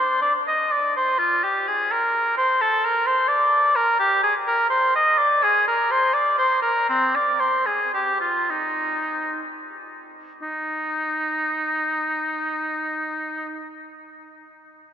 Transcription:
0.00 C5
0.22 D5
0.48 D#5
0.72 D5
0.96 C5
1.19 F4
1.44 G4
1.68 G#4
1.92 A#4
2.37 C5
2.61 A4
2.85 A#4
3.06 C5
3.28 D5
3.76 A#4
3.99 G4
4.24 G#4
4.47 A#4
4.70 C5
4.96 D#5
5.18 D5
5.44 G#4
5.68 A#4
5.91 C5
6.14 D5
6.38 C5
6.62 A#4
6.89 C4
7.16 D5
7.40 C5
7.66 G#4
7.94 G4
8.20 F4
8.50 D#4
10.42 D#4

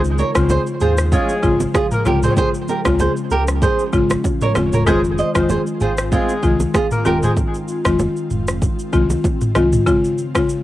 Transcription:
Already playing: C#2 C#3 F3 G#3 C4 F4 C5
0.04 shaker
0.18 A#4 C#5, shaker
0.35 C#2 C#3 G#3 C4 F4 C5, kick, cross-stick, shaker
0.49 G#4 C5, high bongo, low conga, shaker
0.67 shaker
0.80 D#2 C4 F4 G#4 C5, mid tom, shaker
0.98 cross-stick, shaker
1.12 G#3 C#4 F4 G#4, kick, low conga, shaker
1.29 shaker
1.43 G#1 C#3 G#3 C4 F4, kick, shaker
1.60 low bongo, shaker
1.74 F4 G#4, kick, cross-stick, high bongo, shaker
1.91 A#3 A#4, mid tom, shaker
2.05 C2 C#3 G#3 C4 F4 G4 A#4, low bongo, shaker
2.23 C4 G#4 C5, mid tom, shaker
2.37 C#4 G#4 C5, kick, low conga, shaker
2.54 shaker
2.68 G4 A#4, low bongo, shaker
2.85 C#2 C#3 G#3 C4 F4, kick, cross-stick, low bongo, shaker
2.99 G#4 C5, high bongo, low conga, shaker
3.17 shaker
3.30 C#2 G4 A#4, shaker
3.48 cross-stick, shaker
3.62 G#4 C5, kick, low conga, shaker
3.79 shaker
3.93 G#1 C#3 G#3 C4 F4, kick, shaker
4.10 cross-stick, low bongo, shaker
4.24 kick, high bongo, shaker
4.41 A#4 C#5, mid tom, shaker
4.55 D#1 C#3 G#3 C4 F4, cross-stick, high bongo, low bongo, shaker
4.73 A#4 C#5, mid tom, shaker
4.86 F1 D#3 G#3 C4 F4 G#4 C5, kick, low conga, shaker
5.04 shaker
5.18 C5 D#5, shaker
5.35 F1 D#3 G#3 C4 F4 C5, kick, cross-stick, shaker
5.49 G#4 C5, high bongo, low conga, shaker
5.67 shaker
5.80 G#1 C4 F4 G#4 C5, mid tom, shaker
5.98 cross-stick, shaker
6.12 G#3 C4 F4 G#4, kick, low conga, shaker
6.29 shaker
6.43 C2 D#3 G#3 C4 F4, kick, shaker
6.60 low bongo, shaker
6.74 F4 G#4, kick, cross-stick, high bongo, shaker
6.91 A#3 A#4, mid tom, shaker
7.05 D#1 D#3 G#3 C4 F4 G4 A#4, low bongo, shaker
7.23 G#3 G#4 C5, mid tom, shaker
7.37 kick, low conga, shaker
7.54 shaker
7.68 shaker
7.85 F1 D#3 G#3 C4 F4, kick, cross-stick, shaker
7.99 high bongo, low conga, shaker
8.17 shaker
8.30 F1, mid tom, shaker
8.48 cross-stick, shaker
8.62 kick, low conga, shaker
8.79 shaker
8.93 C2 D#3 G#3 C4 F4, kick, shaker
9.10 low bongo, shaker
9.24 kick, high bongo, shaker
9.41 mid tom, shaker
9.55 C2 D#3 G#3 C4 F4, cross-stick, low bongo, shaker
9.73 mid tom, shaker
9.86 C#3 G#3 C4 F4, kick, shaker
10.04 shaker
10.18 shaker
10.35 C#3 G#3 C4 F4, kick, cross-stick, shaker
10.49 shaker

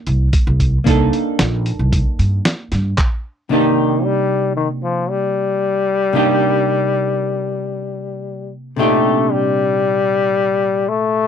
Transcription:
Already playing: A#3 D4 D#4 A4
0.07 C2, closed hi-hat
0.33 kick, closed hi-hat
0.47 C2
0.60 kick, closed hi-hat
0.84 C2 A#3 D4 D#4 A4, kick, closed hi-hat
1.13 closed hi-hat
1.39 A#1, snare, closed hi-hat
1.66 closed hi-hat
1.79 C2
1.92 kick, closed hi-hat
2.19 G2, closed hi-hat
2.45 snare, closed hi-hat
2.72 G2, snare, closed hi-hat
2.98 kick, clap
3.49 C3 D#3 A#3 D4 D#4 G4
4.04 G3
4.56 D#3
4.83 F3
5.10 G3
6.13 C3 A#3 D4 D#4 G4
8.76 A#2 C3 A3 D4 D#4 G4
9.32 G3
10.89 A3

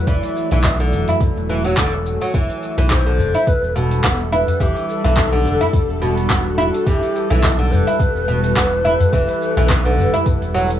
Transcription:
Already playing: E3 F#3 A3
0.07 E1 E3 D5, kick, open hi-hat, shaker
0.23 open hi-hat, shaker
0.36 shaker
0.51 B1 E3, open hi-hat, shaker
0.64 kick, clap, open hi-hat, shaker
0.80 D3, open hi-hat, shaker
0.92 E1, shaker
1.08 E4, open hi-hat, udu, shaker
1.20 kick, open hi-hat, udu, shaker
1.36 E1, shaker
1.49 E3, shaker
1.64 F#3, open hi-hat, shaker
1.77 E1 D3, kick, clap, open hi-hat, shaker
1.93 shaker
2.06 shaker
2.21 F#3, open hi-hat, shaker
2.34 E1 E3 G3 D4 A4, kick, open hi-hat, shaker
2.49 open hi-hat, shaker
2.63 shaker
2.78 B1 E3, open hi-hat, shaker
2.90 C5, kick, clap, open hi-hat, shaker
3.06 D3
3.18 E1, udu, shaker
3.34 E4, open hi-hat, shaker
3.47 B4, kick, open hi-hat, shaker
3.63 E1, shaker
3.75 B2 A4, shaker
3.91 open hi-hat, shaker
4.04 E1 B3, kick, clap, open hi-hat, shaker
4.20 shaker
4.32 E4 B4, shaker
4.47 open hi-hat, udu, shaker
4.60 E1 E3 G4, kick, open hi-hat, shaker
4.76 open hi-hat, shaker
4.89 A4, shaker
5.04 B1 E3, open hi-hat, shaker
5.17 kick, clap, open hi-hat, shaker
5.33 D3
5.45 E1, shaker
5.61 E4, open hi-hat, udu, shaker
5.73 kick, open hi-hat, udu, shaker
5.89 E1, shaker
6.02 B2, shaker
6.17 open hi-hat, shaker
6.30 E1 B3 F#4, kick, clap, open hi-hat, shaker
6.46 shaker
6.58 E4, shaker
6.74 open hi-hat, shaker
6.86 E1 E3 E4 G4, kick, open hi-hat, shaker
7.03 open hi-hat, shaker
7.15 shaker
7.30 B1 E3 A4, open hi-hat, shaker
7.43 kick, clap, open hi-hat, shaker
7.59 D3
7.71 E1 C5, udu, shaker
7.76 B4
7.87 E4, open hi-hat, shaker
8.00 kick, open hi-hat, shaker
8.15 E1, shaker
8.28 B2, shaker
8.44 open hi-hat, shaker
8.56 E1 B3, kick, clap, open hi-hat, shaker
8.73 shaker
8.85 E4, shaker
9.00 open hi-hat, udu, shaker
9.13 E1 E3, kick, open hi-hat, shaker
9.29 open hi-hat, shaker
9.42 shaker
9.57 B1 E3, open hi-hat, shaker
9.70 kick, clap, open hi-hat, shaker
9.85 D3, open hi-hat
9.97 E1, udu, shaker
10.14 E4, open hi-hat, udu, shaker
10.26 kick, open hi-hat, udu, shaker
10.42 E1, open hi-hat, shaker
10.55 F#3, shaker
10.70 open hi-hat, shaker

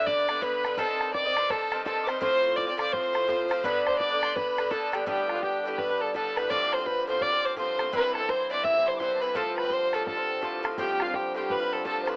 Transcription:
Already playing: G2 D3 B3 D4
0.06 D5 D6, bodhran
0.28 G2 D3 B3 D4, bodhran
0.41 G2 D3 B3 D4 B4 B5, bodhran
0.64 G2 D3 B3 D4, bodhran
0.78 G2 D#3 C4 D#4 A4 A5, bodhran
1.01 bodhran
1.13 D5 D6, bodhran
1.25 D#3 C4 D#4
1.36 G2 D#3 C4 D#4, bodhran
1.50 A4 A5, bodhran
1.72 G2 D#3 C4 D#4, bodhran
1.85 G2 D#3 C4 D#4 A4 A5, bodhran
2.03 C5 D6
2.07 G2 D#3 C4 D#4 C6, bodhran
2.21 A2 F3 C4 F4 C5 C6, bodhran
2.56 D5 D6, bodhran
2.67 F3 C4 F4 D5
2.77 A2 F3 C4 F4 D5, bodhran
2.81 D6
2.92 C5 C6, bodhran
3.13 A2 F3 C4 F4, bodhran
3.28 A2 F3 C4 F4, bodhran
3.49 A2 F3 C4 F4, bodhran
3.63 G2 D3 B3 D4 B4 B5, bodhran
3.86 C5 C6, bodhran
3.99 D5 D6, bodhran
4.10 D3 B3 D4
4.21 G2 D3 B3 D4 C6, bodhran
4.36 B4 B5, bodhran
4.57 G2 D3 B3 D4, bodhran
4.70 G2 D3 B3 D4 A4 A5, bodhran
4.92 G2 D3 B3 D4 G4 G5, bodhran
5.06 G2 A2 D3 G3 B3 D4 G4 G5, bodhran
5.29 F4, bodhran
5.35 G3 B3 D4
5.43 G4 G5, bodhran
5.65 A2 G3 B3 D4 G4
5.78 B4 B5, bodhran
5.89 G3 B3 D4
6.00 A4 A5
6.14 A2 G3 B3 D4 A4 A5, bodhran
6.36 A2 G3 B3 D4 B4 B5, bodhran
6.50 A2 F3 C4 F4 D5 D6, bodhran
6.73 C5 C6, bodhran
6.78 F3 C4 F4
6.86 B4 B5, bodhran
7.07 A2 F3 C4 F4 C5 C6
7.21 D5 D6, bodhran
7.32 F3 C4 F4
7.45 C5
7.56 A2 F3 C4 F4 C5 C6, bodhran
7.78 A2 F3 C4 F4, bodhran
7.93 G2 E3 C4 E4 B4 B5, bodhran
8.15 A4 A5, bodhran
8.20 E3 C4 E4
8.29 C5 C6, bodhran
8.50 G2 E3 C4 E4 D5 D6
8.64 E5 E6, bodhran
8.74 E3 C4 E4
8.86 C5 C6
8.96 G2 C6 D6
9.00 E3 C4 E4 C5, bodhran
9.15 A5
9.20 G2 E3 C4 E4 B4 B5
9.34 A2 F3 C4 F4 A4 A5, bodhran
9.56 B4 B5, bodhran
9.64 F3 C4 F4
9.70 C5 C6, bodhran
9.92 A2 F3 C4 F4 A4 A5, bodhran
10.06 A4 A5, bodhran
10.16 F3 C4 F4
10.42 A2 F3 C4 F4 A5, bodhran
10.63 A2 F3 C4 F4, bodhran
10.78 G2 A2 D3 F3 C4 F4 G4 G5, bodhran
11.00 F4 F5, bodhran
11.06 F3 C4 F4
11.14 G4 G5, bodhran
11.35 A2 F3 C4 F4 G4 G5
11.49 B4 B5, bodhran
11.60 F3 C4 F4
11.73 A4
11.84 A2 F3 C4 F4 A4 A5, bodhran
12.02 A2 C5
12.07 F3 C4 F4 B4, bodhran

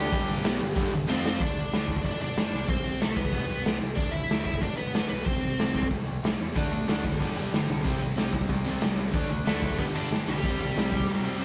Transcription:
Already playing: D2 D3 A3 D4 G4 G5
0.12 G1 G2 D3 G3, kick, open hi-hat
0.43 B1 B2 F#3 B3, snare, open hi-hat
0.60 G1 G2 D3
0.75 G1 G2 D3 G3, kick, open hi-hat
0.91 G1 G2 D3
1.07 F2 F3 C4 F4 C5, snare
1.26 snare
1.40 D2 D4 D5, kick, open hi-hat
1.56 open hi-hat
1.72 D2, snare, open hi-hat
1.88 D2, kick, open hi-hat
1.96 kick
2.04 G1 D4 D5, kick, open hi-hat
2.19 G1 D4 D5, open hi-hat
2.36 G1, snare, open hi-hat
2.52 C2, open hi-hat
2.68 C2 C4 C5, kick, open hi-hat
2.84 C2, open hi-hat
3.01 C2 A3 A4, snare, open hi-hat
3.16 C2 B3 B4, kick, open hi-hat
3.25 kick
3.32 C2, kick, open hi-hat
3.49 C2, open hi-hat
3.65 C2, snare, open hi-hat
3.81 C2, open hi-hat
3.96 D2 D4 D5, kick, open hi-hat
4.11 E4 E5, open hi-hat
4.30 D2, snare, open hi-hat
4.45 F#1 E4 E5, kick, open hi-hat
4.54 kick
4.61 G1 D4 D5, kick, open hi-hat
4.77 G1 B3 B4, open hi-hat
4.94 G1, snare, open hi-hat
5.09 B1 B3 B4, open hi-hat
5.26 C2 C4 C5, kick, open hi-hat
5.42 C2, open hi-hat
5.58 C2, snare, open hi-hat
5.75 C2, kick, open hi-hat
5.83 kick
5.91 C2, kick, open hi-hat
6.06 C2, open hi-hat
6.22 C2, snare, open hi-hat
6.39 E2, open hi-hat
6.56 D2 D3 A3 D4, kick, open hi-hat
6.72 D3 A3, open hi-hat
6.88 D2 D3 A3 D4, snare, open hi-hat
7.04 D2 D3 A3, kick, open hi-hat
7.12 kick
7.21 G1 G2 D3 G3, kick, open hi-hat
7.36 G1 G2 D3 G3, open hi-hat
7.53 G1 G2 D3, snare, open hi-hat
7.69 C2 G2 D3, open hi-hat
7.84 C2 C3 G3 C4, kick, open hi-hat
8.01 C2 C3 G3, open hi-hat
8.17 C2 C3 G3 C4, snare, open hi-hat
8.33 C2 C3 G3, kick, open hi-hat
8.41 kick
8.49 C2 C3 G3 C4, kick, open hi-hat
8.65 C2 C3 G3 C4, open hi-hat
8.81 C2 C3 G3, snare, open hi-hat
8.98 C2 C3 G3, open hi-hat
9.14 D2 D3 A3 D4, kick, open hi-hat
9.30 D3 A3, open hi-hat
9.46 D2 D3 A3 D4 A4, snare, open hi-hat
9.62 D2 D3 A3, kick, open hi-hat
9.70 kick
9.78 G1 G2 D3 G3 B3 B4, kick, open hi-hat
9.95 G1 G2 D3 G3 D4 D5, open hi-hat
10.11 G1 G2 D3, snare, open hi-hat
10.28 B1 G2 D3 G3 G4, open hi-hat
10.43 C2 C3 G3 C4, kick, open hi-hat
10.60 C2 C3 G3, open hi-hat
10.75 C2 C3 G3 C4, snare, open hi-hat
10.92 C2 C3 G3, kick, open hi-hat
11.00 kick
11.09 C3 G3 C4 F#4
11.24 C3 G3 C4
11.41 C3 G3 C4 C5

